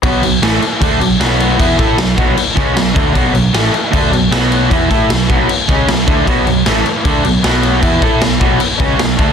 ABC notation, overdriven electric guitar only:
X:1
M:4/4
L:1/8
Q:1/4=154
K:Bdor
V:1 name="Overdriven electric guitar" clef=bass
[B,,F,B,] [B,,F,] [A,,E,A,] z [D,A,D] [B,,F,] [B,,F,B,]2 | [E,B,E] [A,EA] [B,,F,] [B,,F,B,] z [C,G,C] [B,,F,] [D,A,D] | [B,,F,B,] [B,,F,] [A,,E,A,] z [D,A,D] [B,,F,] [B,,F,B,]2 | [E,B,E] [A,EA] [B,,F,] [B,,F,B,] z [C,G,C] [B,,F,] [D,A,D] |
[B,,F,B,] [B,,F,] [A,,E,A,] z [D,A,D] [B,,F,] [B,,F,B,]2 | [E,B,E] [A,EA] [B,,F,] [B,,F,B,] z [C,G,C] [B,,F,] [D,A,D] |]